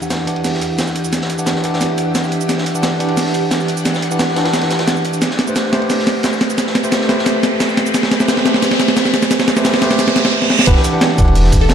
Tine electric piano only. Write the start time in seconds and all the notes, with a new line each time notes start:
0.02 E3 D4 G4 F#5
0.26 E3 D4 G4 F#5
1.38 E3 D4 G4 F#5
1.63 E3 D4 G4 F#5
2.74 E3 D4 G4 F#5
2.99 E3 D4 G4 F#5
4.11 E3 D4 G4 F#5
4.36 E3 D4 G4 F#5
5.47 A3 G4 B4 C5
5.72 A3 G4 B4 C5
6.83 A3 G4 B4 C5
7.08 A3 G4 B4 C5
8.20 A3 G4 B4 C5
8.45 A3 G4 B4 C5
9.56 A3 G4 B4 C5
9.81 A3 G4 B4 C5
10.67 E3 D4 G4 F#5
10.93 E3 D4 G4 F#5
11.17 E3 D4 G4 F#5